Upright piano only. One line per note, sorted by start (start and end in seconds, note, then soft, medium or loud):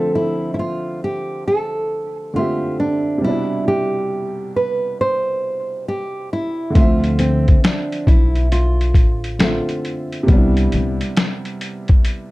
0.00 2.28 D3 medium
0.00 2.35 F3 medium
0.00 2.30 A3 medium
0.00 2.31 C4 medium
0.00 2.33 E5 medium
2.34 3.22 D3 soft
2.34 3.23 A3 soft
2.34 3.24 C4 soft
2.38 3.26 G4 medium
2.38 3.25 E5 soft
3.18 6.69 C3 medium
3.18 6.71 G3 medium
3.25 6.73 B2 medium
3.25 6.74 D4 medium
3.31 6.76 E4 medium
6.70 9.34 D3 medium
6.70 9.35 A3 medium
6.77 9.37 C4 medium
6.77 9.39 E5 medium
6.84 9.41 F3 medium
9.39 10.28 D3 soft
9.39 10.29 A3 soft
9.39 10.30 C4 soft
9.44 10.31 F4 medium
9.44 10.30 E5 soft
10.23 12.31 C3 medium
10.23 12.31 G3 medium
10.30 12.31 B3 medium
10.30 12.31 D4 medium
10.37 12.31 E4 medium